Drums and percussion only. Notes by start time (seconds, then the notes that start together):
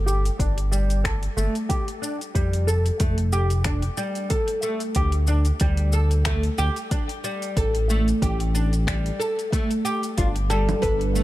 0.08 shaker
0.25 open hi-hat, shaker
0.40 kick, open hi-hat, shaker
0.58 open hi-hat
0.73 shaker
0.90 open hi-hat, shaker
1.05 finger snap, kick, open hi-hat, shaker
1.23 open hi-hat
1.38 shaker
1.55 open hi-hat, shaker
1.70 kick, open hi-hat, shaker
1.88 open hi-hat
2.03 shaker
2.21 open hi-hat, shaker
2.35 kick, open hi-hat, shaker
2.53 open hi-hat
2.68 shaker
2.86 open hi-hat, shaker
3.00 kick, open hi-hat, shaker
3.18 open hi-hat
3.33 shaker
3.50 open hi-hat, shaker
3.64 finger snap, kick, open hi-hat, shaker
3.82 open hi-hat
3.97 shaker
4.15 open hi-hat, shaker
4.30 kick, open hi-hat, shaker
4.48 open hi-hat
4.62 shaker
4.80 open hi-hat, shaker
4.95 kick, open hi-hat, shaker
5.12 open hi-hat
5.27 shaker
5.45 open hi-hat, shaker
5.60 kick, open hi-hat, shaker
5.77 open hi-hat
5.92 shaker
6.11 open hi-hat, shaker
6.25 finger snap, kick, open hi-hat, shaker
6.43 open hi-hat
6.58 shaker
6.76 open hi-hat, shaker
6.91 kick, open hi-hat, shaker
7.09 open hi-hat
7.24 shaker
7.42 open hi-hat, shaker
7.57 kick, open hi-hat, shaker
7.75 open hi-hat
7.90 shaker
8.08 open hi-hat, shaker
8.22 kick, open hi-hat, shaker
8.40 open hi-hat
8.55 shaker
8.73 open hi-hat, shaker
8.87 finger snap, kick, open hi-hat, shaker
9.06 open hi-hat
9.21 shaker
9.39 open hi-hat, shaker
9.53 kick, open hi-hat, shaker
9.71 open hi-hat, shaker
9.85 shaker
10.03 open hi-hat, shaker
10.18 kick, open hi-hat, shaker
10.36 open hi-hat
10.50 shaker
10.69 open hi-hat, low conga, shaker
10.83 kick, open hi-hat, shaker
11.01 open hi-hat
11.16 shaker